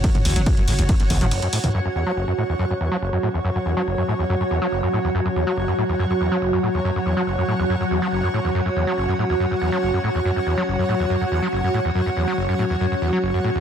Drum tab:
RD |xxxxxxxxxxxxxxxx|----------------|----------------|----------------|
HH |x-oxx-oxx-oxx-ox|----------------|----------------|----------------|
T2 |-o---------o---o|----------------|----------------|----------------|
BD |o---o---o-o-----|----------------|----------------|----------------|

RD |----------------|----------------|----------------|----------------|
HH |----------------|----------------|----------------|----------------|
T2 |----------------|----------------|----------------|----------------|
BD |----------------|----------------|----------------|----------------|